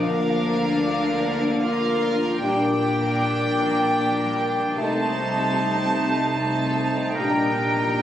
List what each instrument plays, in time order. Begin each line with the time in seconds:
Already playing: french horn section F3, harp F3 A#3 D4 F4, bassoon A#3, clarinet D4, oboe D5, flute section F5
0.04 double bass section D2, harp D3, cello section D3, french horn section A#3, viola section D4, violin section A#4 F5
0.30 harp A#3
0.57 harp D4
0.83 harp F4, violin section A#4
1.09 harp A#4
1.36 harp F4
1.61 harp D4, viola section F4, violin section A#4 F5
1.89 harp A#3
2.16 harp D4
2.40 double bass section A#1, cello section A#2, harp A#2, french horn section G3 D4, bassoon A#3, violin section A#3 G5, viola section D4, clarinet D4, oboe D5, flute section G5
2.61 violin section D4
2.69 harp G3
2.82 violin section G4
2.95 harp A#3
3.01 violin section A#4
3.21 harp D4, violin section G4
3.41 violin section D4
3.46 harp G4
3.60 violin section A#3
3.73 harp D4
3.80 violin section D4
3.97 harp A#3, violin section G4
4.19 violin section A#4
4.24 harp G3
4.38 violin section G4
4.51 harp A#3
4.57 violin section D4
4.76 double bass section C2, cello section C3, harp C3, violin section A3 A5, french horn section A3 D#4, bassoon A3, clarinet D#4, viola section D#4, oboe C5, flute section A5
4.97 violin section C4
5.05 harp C4
5.15 violin section D#4
5.31 harp A3
5.35 violin section A4
5.54 violin section D#4, harp D#4
5.75 violin section C4
5.84 harp A4
5.95 violin section A3
6.10 harp D#4
6.15 violin section C4
6.35 harp A3, violin section D#4
6.54 violin section A4
6.65 harp C4
6.75 violin section D#4
6.91 harp A3
6.96 violin section C4
7.15 double bass section A#1, harp A#2, cello section A#2, bassoon G3, french horn section G3 D4, violin section A#3 G5, clarinet D4, oboe A#4, flute section A#5
7.36 violin section D4
7.45 harp A#3
7.57 violin section G4
7.73 harp G3
7.78 violin section A#4
7.99 viola section D4